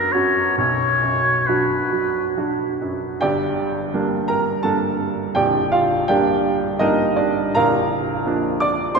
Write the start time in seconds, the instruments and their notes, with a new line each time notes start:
Already playing: grand piano F#2, oboe A#4
0.12 grand piano C#4 F#4, oboe C#5
0.58 grand piano B1, oboe C#5
1.03 grand piano F#2
1.47 grand piano F#3 D4 F#4, oboe B4
1.92 grand piano F#3
2.37 grand piano F#3 D4 F#4
2.82 grand piano F#2
3.21 grand piano G1 G2 G4 D5 G5
3.94 grand piano G3 A#3 D4
4.28 grand piano A#4 A#5
4.63 grand piano G3 A#3 D4 A4 A5
5.35 grand piano A#0 A#1 G4 D5 G5
5.72 grand piano F4 F5
6.08 grand piano G3 A#3 D4 G4 D5 G5
6.79 grand piano G3 A#3 D4 D#4 A#4 D#5
7.16 grand piano D4 D5
7.55 grand piano A#0 A#1 A#4 F5 A#5
8.26 grand piano F3 A#3 D4
8.60 grand piano D5 D6
8.95 grand piano F3 A#3 C5 C6